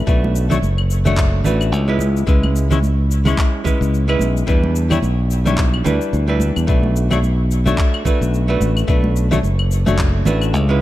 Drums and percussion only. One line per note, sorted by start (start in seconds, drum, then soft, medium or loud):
0.07 kick loud
0.07 cabasa soft
0.24 high conga medium
0.36 cabasa medium
0.51 low conga medium
0.51 cabasa soft
0.63 high conga medium
0.63 cabasa soft
0.78 claves medium
0.91 cabasa medium
1.06 high conga medium
1.06 low conga medium
1.06 cabasa soft
1.17 kick loud
1.17 clap medium
1.17 cabasa soft
1.44 high conga medium
1.44 low conga medium
1.44 cabasa medium
1.61 cabasa soft
1.61 claves medium
1.73 cabasa soft
1.99 high conga medium
1.99 cabasa medium
2.17 cabasa soft
2.27 kick loud
2.27 cabasa soft
2.43 high conga loud
2.43 claves medium
2.56 cabasa medium
2.71 low conga loud
2.71 cabasa soft
2.83 high conga medium
2.83 cabasa soft
3.11 cabasa medium
3.26 high conga medium
3.26 low conga medium
3.26 cabasa soft
3.26 claves medium
3.38 kick loud
3.38 clap medium
3.38 cabasa soft
3.65 kick medium
3.65 high conga medium
3.65 low conga medium
3.65 cabasa medium
3.82 cabasa soft
3.94 cabasa soft
4.09 claves medium
4.19 high conga medium
4.19 cabasa medium
4.37 cabasa soft
4.48 kick loud
4.48 cabasa soft
4.63 high conga medium
4.76 cabasa medium
4.91 low conga medium
4.91 cabasa soft
4.91 claves medium
5.02 high conga medium
5.02 cabasa soft
5.31 cabasa medium
5.46 high conga medium
5.46 low conga medium
5.46 cabasa soft
5.58 kick loud
5.58 clap medium
5.58 cabasa soft
5.74 claves medium
5.85 high conga medium
5.85 low conga medium
5.85 cabasa medium
6.01 cabasa soft
6.13 cabasa soft
6.40 high conga medium
6.40 cabasa medium
6.56 cabasa soft
6.56 claves medium
6.68 kick loud
6.68 cabasa soft
6.83 high conga medium
6.96 cabasa medium
7.10 low conga medium
7.10 cabasa soft
7.10 claves medium
7.23 high conga medium
7.23 cabasa soft
7.51 cabasa medium
7.66 high conga medium
7.66 low conga medium
7.66 cabasa soft
7.78 kick loud
7.78 clap medium
7.78 cabasa soft
7.94 claves medium
8.05 kick medium
8.05 high conga medium
8.05 low conga medium
8.05 cabasa medium
8.22 cabasa soft
8.34 cabasa soft
8.61 high conga medium
8.61 cabasa medium
8.77 cabasa soft
8.77 claves medium
8.88 kick loud
8.88 cabasa soft
9.04 high conga medium
9.16 cabasa medium
9.32 low conga medium
9.32 cabasa soft
9.44 high conga medium
9.44 cabasa soft
9.59 claves medium
9.71 cabasa medium
9.87 high conga medium
9.87 low conga medium
9.87 cabasa soft
9.98 kick loud
9.98 clap medium
9.98 cabasa soft
10.25 high conga medium
10.25 low conga medium
10.25 cabasa medium
10.42 cabasa soft
10.42 claves medium
10.54 cabasa soft